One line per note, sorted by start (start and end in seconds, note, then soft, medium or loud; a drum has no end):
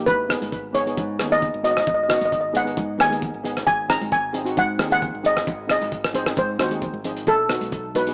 0.06 0.37 G#1 medium
0.06 0.49 B4 loud
0.06 kick loud
0.06 closed hi-hat medium
0.29 0.56 B3 medium
0.29 0.57 D#4 medium
0.29 0.57 G#4 medium
0.29 cross-stick medium
0.29 closed hi-hat medium
0.41 0.99 G#1 medium
0.41 closed hi-hat medium
0.41 high conga medium
0.52 kick medium
0.52 closed hi-hat medium
0.73 0.81 B3 medium
0.73 0.81 D#4 medium
0.73 0.82 G#4 medium
0.73 1.33 C#5 medium
0.73 closed hi-hat medium
0.73 high conga medium
0.73 low conga medium
0.86 1.06 B3 medium
0.86 1.07 D#4 medium
0.86 1.07 G#4 medium
0.86 closed hi-hat medium
0.97 1.17 G#2 loud
0.97 kick loud
0.97 closed hi-hat medium
1.19 1.49 D#2 medium
1.19 1.26 B3 medium
1.19 1.26 D#4 medium
1.19 1.27 G#4 medium
1.19 cross-stick medium
1.19 closed hi-hat medium
1.19 high conga medium
1.30 1.51 B3 medium
1.30 1.51 D#4 medium
1.30 1.52 G#4 medium
1.30 1.63 D#5 medium
1.30 closed hi-hat medium
1.30 high conga medium
1.42 kick medium
1.42 closed hi-hat medium
1.42 low conga medium
1.54 1.82 G#1 loud
1.63 1.91 B3 medium
1.63 1.91 D#4 medium
1.63 1.92 F#4 medium
1.63 1.70 D#5 medium
1.63 closed hi-hat medium
1.71 1.79 D#5 medium
1.77 1.86 D#5 medium
1.77 cross-stick medium
1.77 closed hi-hat medium
1.87 2.17 G#1 loud
1.87 1.93 D#5 medium
1.87 kick loud
1.87 closed hi-hat medium
1.94 2.02 D#5 medium
2.04 2.09 D#5 medium
2.08 2.36 B3 medium
2.08 2.36 D#4 medium
2.08 2.36 F#4 medium
2.08 2.16 D#5 medium
2.08 cross-stick loud
2.08 closed hi-hat medium
2.17 2.24 D#5 medium
2.17 closed hi-hat medium
2.17 high conga medium
2.21 2.79 G#1 medium
2.25 2.31 D#5 medium
2.32 2.40 D#5 medium
2.32 kick medium
2.32 closed hi-hat medium
2.41 2.48 D#5 medium
2.53 2.61 B3 medium
2.53 2.61 D#4 medium
2.53 2.61 G#4 medium
2.53 2.98 F#5 loud
2.53 closed hi-hat medium
2.53 high conga medium
2.53 low conga medium
2.64 2.86 B3 medium
2.64 2.86 D#4 medium
2.64 2.86 G#4 medium
2.64 closed hi-hat medium
2.77 2.97 G#2 loud
2.77 kick loud
2.77 closed hi-hat medium
2.98 3.29 D#2 loud
2.98 3.06 B3 medium
2.98 3.06 D#4 medium
2.98 3.07 G#4 medium
2.98 3.42 G#5 loud
2.98 cross-stick medium
2.98 closed hi-hat medium
2.98 high conga medium
3.09 3.31 B3 medium
3.09 3.31 D#4 medium
3.09 3.31 G#4 medium
3.09 closed hi-hat medium
3.09 high conga medium
3.22 kick medium
3.22 closed hi-hat medium
3.22 low conga medium
3.34 3.62 G#1 medium
3.44 3.67 B3 medium
3.44 3.67 D#4 medium
3.44 3.67 G#4 medium
3.44 closed hi-hat medium
3.44 low conga medium
3.57 cross-stick medium
3.57 closed hi-hat medium
3.67 3.97 G#1 medium
3.67 3.88 G#5 loud
3.67 kick loud
3.67 closed hi-hat medium
3.88 4.16 C4 medium
3.88 4.16 D#4 medium
3.88 4.17 G#4 medium
3.88 4.13 A#5 loud
3.88 cross-stick medium
3.88 closed hi-hat medium
4.01 4.59 G#1 medium
4.01 closed hi-hat medium
4.01 high conga medium
4.12 4.54 G#5 loud
4.12 kick loud
4.12 closed hi-hat medium
4.33 4.41 C4 medium
4.33 4.41 D#4 medium
4.33 4.41 G#4 medium
4.33 closed hi-hat medium
4.33 low conga medium
4.44 4.66 C4 medium
4.44 4.66 D#4 medium
4.44 4.66 F#4 medium
4.44 closed hi-hat medium
4.57 4.77 G#2 loud
4.57 4.91 F#5 loud
4.57 kick loud
4.57 closed hi-hat medium
4.78 5.09 D#2 loud
4.78 4.86 C4 medium
4.78 4.86 D#4 medium
4.78 4.87 G#4 medium
4.78 cross-stick medium
4.78 closed hi-hat medium
4.78 high conga medium
4.89 5.10 C4 medium
4.89 5.11 D#4 medium
4.89 5.11 G#4 medium
4.89 5.26 F#5 loud
4.89 closed hi-hat medium
4.89 high conga medium
5.02 kick medium
5.02 closed hi-hat medium
5.02 low conga medium
5.15 5.43 G#1 medium
5.23 5.51 C4 medium
5.23 5.51 D#4 medium
5.23 5.52 G#4 medium
5.23 5.67 D#5 medium
5.23 closed hi-hat medium
5.23 low conga medium
5.37 cross-stick medium
5.37 closed hi-hat medium
5.47 5.77 G#1 medium
5.47 kick loud
5.47 closed hi-hat medium
5.67 5.96 C4 medium
5.67 5.96 D#4 medium
5.67 5.97 G#4 medium
5.67 6.17 D#5 loud
5.67 cross-stick medium
5.67 closed hi-hat medium
5.81 6.39 G#1 medium
5.81 closed hi-hat medium
5.81 high conga medium
5.92 kick medium
5.92 closed hi-hat medium
6.04 cross-stick medium
6.13 6.21 C4 medium
6.13 6.21 D#4 medium
6.13 6.22 G#4 medium
6.13 6.37 C5 medium
6.13 closed hi-hat medium
6.13 high conga medium
6.13 low conga medium
6.25 6.46 C4 medium
6.25 6.46 D#4 medium
6.25 6.47 G#4 medium
6.25 cross-stick medium
6.25 closed hi-hat medium
6.37 6.57 G#2 loud
6.37 6.59 C5 medium
6.37 kick loud
6.37 closed hi-hat medium
6.58 6.89 D#2 medium
6.58 6.66 C4 medium
6.58 6.67 D#4 medium
6.58 6.67 F#4 medium
6.58 7.02 C5 medium
6.58 cross-stick medium
6.58 closed hi-hat medium
6.58 high conga medium
6.71 6.92 C4 medium
6.71 6.92 D#4 medium
6.71 6.92 G#4 medium
6.71 closed hi-hat medium
6.71 high conga medium
6.82 kick medium
6.82 closed hi-hat medium
6.82 low conga medium
6.93 7.27 G#1 medium
6.93 high conga medium
7.04 7.27 C4 medium
7.04 7.28 D#4 medium
7.04 7.28 G#4 medium
7.04 closed hi-hat medium
7.04 low conga medium
7.17 closed hi-hat medium
7.27 7.57 B1 medium
7.27 7.70 A4 loud
7.27 kick loud
7.27 closed hi-hat medium
7.48 7.77 B3 medium
7.48 7.77 D#4 medium
7.48 7.77 F#4 medium
7.48 cross-stick medium
7.48 closed hi-hat loud
7.61 8.14 B1 medium
7.61 closed hi-hat medium
7.61 high conga medium
7.72 kick medium
7.72 closed hi-hat medium
7.95 8.02 B3 medium
7.95 8.02 D#4 medium
7.95 8.03 F#4 medium
7.95 8.14 B4 medium
7.95 closed hi-hat loud
7.95 high conga medium
7.95 low conga medium
8.07 8.14 B3 medium
8.07 8.14 D#4 medium
8.07 8.14 G#4 medium
8.07 closed hi-hat medium